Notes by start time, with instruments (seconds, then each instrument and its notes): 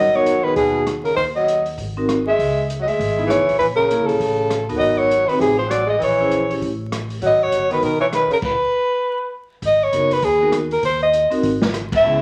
Already playing: upright bass G#1, tenor saxophone F#3, soprano saxophone D#5
0.13 tenor saxophone F#3, vibraphone B3 D#4 F#4 A#4, soprano saxophone C#5
0.26 closed hi-hat
0.43 tenor saxophone D#3, vibraphone B3 D#4 F#4 G#4, soprano saxophone B4
0.56 upright bass D#2, tenor saxophone B2, soprano saxophone G#4, kick, open hi-hat
0.87 cross-stick, closed hi-hat
1.03 tenor saxophone C#3, soprano saxophone A#4, open hi-hat
1.14 upright bass D#2, tenor saxophone D#3, soprano saxophone C5, kick, open hi-hat
1.36 tenor saxophone F#3, soprano saxophone D#5
1.48 closed hi-hat
1.66 open hi-hat
1.77 upright bass G#1, kick, open hi-hat
1.97 vibraphone C4 D#4 F#4 A#4
2.09 cross-stick, closed hi-hat
2.26 tenor saxophone G#3, soprano saxophone E5
2.39 upright bass C#2, kick, open hi-hat
2.70 closed hi-hat
2.79 tenor saxophone F#3, soprano saxophone D#5
2.86 upright bass D2, tenor saxophone G#3, soprano saxophone E5, open hi-hat
2.99 upright bass G#1, kick, open hi-hat
3.18 vibraphone B3 D#4 E4 G#4
3.27 tenor saxophone E3, soprano saxophone C#5, cross-stick, closed hi-hat
3.39 upright bass C#2
3.49 upright bass B1, open hi-hat
3.58 upright bass A#1, tenor saxophone E3, soprano saxophone B4, kick, open hi-hat
3.75 tenor saxophone C#3, soprano saxophone A#4
3.90 vibraphone A#3 C#4 E4 G#4, closed hi-hat
4.00 upright bass C#2
4.05 tenor saxophone C#3, soprano saxophone A4
4.09 upright bass A#1, open hi-hat
4.20 upright bass A1, kick, open hi-hat
4.50 cross-stick, closed hi-hat
4.69 upright bass D#2, vibraphone B3 D#4 F#4 A#4, open hi-hat
4.76 tenor saxophone F#3, soprano saxophone D#5
4.80 upright bass G#1, kick, open hi-hat
4.94 tenor saxophone F#3, soprano saxophone C#5
5.11 closed hi-hat
5.26 tenor saxophone D#3, vibraphone C4, soprano saxophone B4, muted upright bass stroke, open hi-hat
5.30 vibraphone D#4 F#4 B4
5.37 upright bass A1, tenor saxophone C3, soprano saxophone G#4, kick, open hi-hat
5.55 tenor saxophone F3, soprano saxophone C5
5.67 tenor saxophone F#3, soprano saxophone D5, cross-stick, closed hi-hat
5.86 tenor saxophone G#3, soprano saxophone D#5
5.98 upright bass A#1, tenor saxophone E3, kick, open hi-hat
6.03 soprano saxophone C#5
6.20 vibraphone C#4 E4 G#4 C5
6.31 closed hi-hat
6.50 vibraphone C#4 E4 G4 C#5, open hi-hat
6.61 upright bass A1, kick, open hi-hat
6.92 cross-stick, closed hi-hat
7.10 open hi-hat
7.21 upright bass G#1, tenor saxophone F#3, kick, open hi-hat
7.26 soprano saxophone D#5
7.42 tenor saxophone F#3, soprano saxophone C#5
7.52 upright bass G1, closed hi-hat
7.70 tenor saxophone D#3, vibraphone B3 D#4 F#4 A#4, soprano saxophone B4, open hi-hat
7.82 upright bass B1, tenor saxophone D#3, soprano saxophone A#4, kick, open hi-hat
8.00 tenor saxophone E3, soprano saxophone C#5
8.12 tenor saxophone D#3, soprano saxophone B4, cross-stick, closed hi-hat
8.30 tenor saxophone C#3, soprano saxophone A#4, muted upright bass stroke, open hi-hat
8.42 soprano saxophone B4, kick, crash
9.62 upright bass G#1, kick, open hi-hat
9.66 soprano saxophone D#5
9.83 soprano saxophone C#5
9.92 upright bass F#1, vibraphone B3 D#4 F#4 A#4, closed hi-hat
10.11 soprano saxophone B4, open hi-hat
10.22 upright bass D#2, soprano saxophone G#4, kick, open hi-hat
10.41 vibraphone B3 D#4 F#4 A#4
10.52 cross-stick, closed hi-hat
10.71 soprano saxophone A#4, open hi-hat
10.82 upright bass D#2, soprano saxophone C5, kick, open hi-hat
11.03 soprano saxophone D#5
11.13 closed hi-hat
11.30 vibraphone C4 D#4 F#4 A#4, muted upright bass stroke, open hi-hat
11.43 upright bass G#1, kick, open hi-hat
11.62 snare
11.74 cross-stick, closed hi-hat
11.92 kick, ride
11.96 soprano saxophone E5
12.04 upright bass C#2, vibraphone B3 C#4 E4 G#4